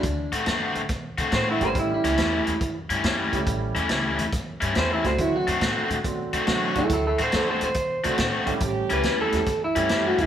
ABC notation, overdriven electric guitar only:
X:1
M:4/4
L:1/8
Q:"Swing" 1/4=140
K:D
V:1 name="Overdriven electric guitar"
z [D,A,=CF] [D,A,CF] z2 [D,A,CF] [D,A,CF] z | z [A,,G,CE] [A,,G,CE] z2 [A,,G,CE] [A,,G,CE] z | z [A,,G,CE] [A,,G,CE] z2 [A,,G,CE] [A,,G,CE] z | z [D,A,=CF] [D,A,CF] z2 [D,A,CF] [D,A,CF] z |
z [D,A,=CF] [D,A,CF] z2 [D,A,CF] [D,A,CF] z | z [A,,G,CE] [A,,G,CE] z2 [A,,G,CE] [A,,G,CE] z |]